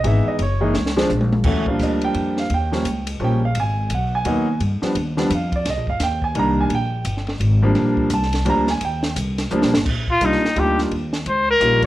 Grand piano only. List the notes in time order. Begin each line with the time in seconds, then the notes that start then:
0.04 E3 G#3 B3 D#4 E5
0.28 D#5
0.43 C#5
0.61 E3 G#3 A#3 D#4
0.97 F3 G#3 C4 D4
1.45 E3 F#3 A3 C#4
1.67 F3 G3 A#3 D4 F5
1.83 D#5
2.04 G5
2.39 F5
2.54 G5
2.72 F3 G3 A#3 C#4
3.20 F3 G3 A#3 C#4
3.24 G5
3.45 F5
3.60 G#5
3.94 F#5
4.15 G#5
4.25 F#3 A#3 B3 D#4
4.82 F3 G3 B3 D4
5.17 F3 G3 B3 D4
5.35 F5
5.56 D5
5.70 D#5
5.90 F5
6.03 G5
6.24 G#5
6.35 D#3 G3 A#3 D4
6.39 A#5
6.61 G#5
6.75 G5
7.62 F3 G3 A#3 D4
8.14 A5
8.45 F3 G3 A#3 D4
8.49 A#5
8.70 G#5
8.84 G5
9.51 F3 G3 A#3 D4
10.21 G3 A#3 D4 D#4 F4
10.55 G3 A#3 D4 D#4 F4
11.60 G3 A#3 C#4 D#4 F4